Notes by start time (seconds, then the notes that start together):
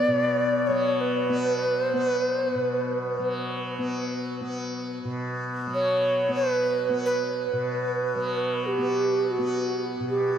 Already playing: F#3 B3 D5
0.08 B2
0.67 F#3 C#5
1.01 B4
1.29 B3
1.84 C5
1.93 B3
2.06 B4
2.30 C5
2.52 B2 B4
3.19 F#3
3.79 B3
4.41 B3
5.05 B2
5.67 F#3
5.74 C#5
6.29 B3
6.36 B4
6.89 B3
7.05 B4
7.53 B2
8.15 F#3
8.66 G4
8.78 B3
9.31 F#4
9.39 B3
10.00 B2
10.10 G4